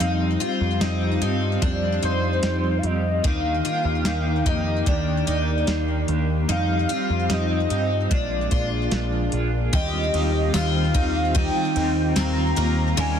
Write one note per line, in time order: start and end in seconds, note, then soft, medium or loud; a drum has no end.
0.00 0.36 F2 medium
0.00 0.40 F3 medium
0.00 3.21 G3 medium
0.00 0.41 G3 medium
0.00 3.21 C4 medium
0.00 0.41 C4 medium
0.00 0.41 D#4 medium
0.00 3.21 F4 medium
0.00 0.39 G4 medium
0.00 0.83 F5 medium
0.00 closed hi-hat medium
0.40 0.81 G3 soft
0.40 0.82 C4 soft
0.40 0.81 F4 medium
0.40 0.81 G4 medium
0.40 closed hi-hat medium
0.61 0.79 F2 medium
0.80 1.17 F2 medium
0.80 1.21 F3 medium
0.80 1.22 G3 medium
0.80 1.22 C4 medium
0.80 1.20 D#4 medium
0.80 1.20 G4 medium
0.80 snare loud
0.80 closed hi-hat medium
1.21 1.57 G2 medium
1.21 1.62 G3 soft
1.21 1.62 C4 medium
1.21 1.62 D#4 medium
1.21 1.62 G4 soft
1.21 closed hi-hat soft
1.62 1.98 F2 medium
1.62 2.03 F3 medium
1.62 2.03 G3 medium
1.62 2.03 C4 medium
1.62 2.02 D4 medium
1.62 2.01 G4 medium
1.62 kick medium
1.62 closed hi-hat medium
2.02 2.39 F2 medium
2.02 2.43 G3 soft
2.02 2.44 C4 soft
2.02 2.84 D#4 medium
2.02 2.43 G4 soft
2.02 2.80 C5 loud
2.02 closed hi-hat soft
2.43 2.79 F2 medium
2.43 2.84 F3 soft
2.43 2.84 G3 medium
2.43 2.84 C4 medium
2.43 2.82 G4 medium
2.43 snare loud
2.43 closed hi-hat medium
2.78 2.87 F5 medium
2.83 3.19 F2 medium
2.83 3.25 G3 soft
2.83 3.25 C4 soft
2.83 3.24 G4 medium
2.83 3.27 D#5 loud
2.83 closed hi-hat soft
3.24 3.60 D#2 loud
3.24 3.65 D#3 medium
3.24 6.45 D#3 medium
3.24 6.45 A#3 medium
3.24 3.65 A#3 medium
3.24 3.65 D4 medium
3.24 3.65 D#4 medium
3.24 6.45 G4 medium
3.24 3.63 G4 medium
3.24 4.50 F5 loud
3.24 kick medium
3.24 closed hi-hat medium
3.64 4.05 A#3 soft
3.64 4.06 D4 soft
3.64 4.05 F4 medium
3.64 4.05 G4 medium
3.64 closed hi-hat medium
3.85 4.03 D#2 medium
4.05 4.41 D#2 medium
4.05 4.46 D#3 medium
4.05 4.47 A#3 medium
4.05 4.47 D4 medium
4.05 4.45 D#4 medium
4.05 4.45 G4 medium
4.05 snare loud
4.05 closed hi-hat medium
4.46 4.82 F2 medium
4.46 4.86 A#3 soft
4.46 4.86 D#4 medium
4.46 4.87 G4 medium
4.46 4.88 D#5 medium
4.46 kick medium
4.46 closed hi-hat medium
4.86 5.22 D#2 medium
4.86 5.27 D#3 medium
4.86 5.28 A#3 medium
4.86 5.27 D4 medium
4.86 5.28 D4 medium
4.86 5.26 G4 medium
4.86 6.05 D5 medium
4.86 kick medium
4.86 closed hi-hat medium
5.27 5.63 D#2 medium
5.27 5.67 A#3 soft
5.27 5.68 D4 soft
5.27 6.08 D#4 medium
5.27 5.68 G4 medium
5.27 closed hi-hat soft
5.67 6.03 D#2 medium
5.67 6.08 D#3 medium
5.67 6.09 A#3 medium
5.67 6.09 D4 medium
5.67 6.06 G4 medium
5.67 snare loud
5.67 closed hi-hat medium
6.08 6.44 D#2 medium
6.08 6.49 A#3 soft
6.08 6.50 D4 medium
6.08 6.49 G4 medium
6.08 closed hi-hat soft
6.48 6.85 F2 medium
6.48 6.89 F3 medium
6.48 8.10 G3 medium
6.48 6.90 G3 medium
6.48 8.10 C4 medium
6.48 6.89 C4 medium
6.48 6.89 D#4 medium
6.48 8.10 F4 medium
6.48 6.87 G4 medium
6.48 7.34 F5 loud
6.48 closed hi-hat medium
6.89 7.29 G3 soft
6.89 7.31 C4 soft
6.89 7.30 F4 medium
6.89 7.30 G4 soft
6.89 closed hi-hat medium
7.10 7.28 F2 medium
7.29 7.66 F2 medium
7.29 7.70 F3 medium
7.29 7.71 G3 medium
7.29 7.70 C4 medium
7.29 7.69 D#4 medium
7.29 7.68 G4 medium
7.29 8.15 D#5 loud
7.29 snare loud
7.29 closed hi-hat medium
7.69 8.06 G2 medium
7.69 8.11 G3 soft
7.69 8.12 C4 soft
7.69 8.10 D#4 medium
7.69 8.11 G4 soft
7.69 closed hi-hat medium
8.10 8.47 A#1 medium
8.10 8.51 A#2 medium
8.10 8.52 F3 medium
8.10 9.72 G#3 medium
8.10 8.52 G#3 medium
8.10 9.72 A#3 medium
8.10 8.52 D4 medium
8.10 9.72 D4 medium
8.10 8.52 D4 medium
8.10 8.50 F4 medium
8.10 9.34 D5 medium
8.10 kick medium
8.10 closed hi-hat medium
8.51 8.87 A#1 medium
8.51 8.92 G#3 soft
8.51 8.93 D4 soft
8.51 8.92 F4 medium
8.51 9.33 F4 medium
8.51 kick medium
8.51 closed hi-hat soft
8.91 9.28 A#1 medium
8.91 9.32 F3 medium
8.91 9.33 G#3 medium
8.91 9.33 D4 medium
8.91 9.31 F4 medium
8.91 snare loud
8.91 closed hi-hat medium
9.32 9.68 A#1 medium
9.32 9.73 G#3 soft
9.32 9.74 D4 soft
9.32 9.73 F4 medium
9.32 closed hi-hat soft
9.73 10.09 D#2 loud
9.73 10.13 D#3 medium
9.73 12.94 D#3 medium
9.73 10.14 G3 medium
9.73 12.94 C4 medium
9.73 10.14 C4 medium
9.73 13.20 F4 medium
9.73 10.12 F4 medium
9.73 10.54 G4 medium
9.73 12.94 G4 medium
9.73 10.57 D#5 loud
9.73 kick loud
9.73 ride medium
10.13 10.50 D#2 medium
10.13 10.54 G3 soft
10.13 10.55 C4 medium
10.13 10.54 F4 medium
10.13 ride soft
10.54 10.90 D#2 loud
10.54 10.95 D#3 medium
10.54 10.95 G3 medium
10.54 10.95 C4 medium
10.54 10.95 F4 medium
10.54 10.93 F4 medium
10.54 11.39 F5 loud
10.54 snare loud
10.54 ride medium
10.54 tambourine medium
10.94 11.48 D#2 loud
10.94 11.35 G3 soft
10.94 11.36 C4 soft
10.94 11.33 D#4 medium
10.94 11.35 F4 medium
10.94 kick medium
10.94 ride soft
11.34 11.75 D#3 medium
11.34 11.76 G3 medium
11.34 11.76 C4 medium
11.34 12.16 D#4 medium
11.34 11.74 F4 medium
11.34 12.20 G5 loud
11.34 kick loud
11.34 ride medium
11.75 12.12 D#2 loud
11.75 12.15 G3 soft
11.75 12.16 C4 medium
11.75 12.16 F4 medium
11.75 ride soft
12.15 12.52 D#2 loud
12.15 12.56 D#3 medium
12.15 12.57 G3 medium
12.15 12.57 C4 medium
12.15 12.55 F4 medium
12.15 12.99 A#5 loud
12.15 snare loud
12.15 ride medium
12.15 tambourine medium
12.56 12.93 D#2 medium
12.56 12.97 G3 medium
12.56 12.97 A#3 medium
12.56 12.98 C4 soft
12.56 12.97 F4 medium
12.56 ride soft
12.97 13.20 D#2 loud
12.97 13.20 D#3 medium
12.97 13.20 G3 loud
12.97 13.20 G#3 medium
12.97 13.20 A#3 medium
12.97 13.20 C#4 medium
12.97 13.20 F4 medium
12.97 13.20 A#4 medium
12.97 13.20 G#5 medium
12.97 13.20 G#5 loud
12.97 ride medium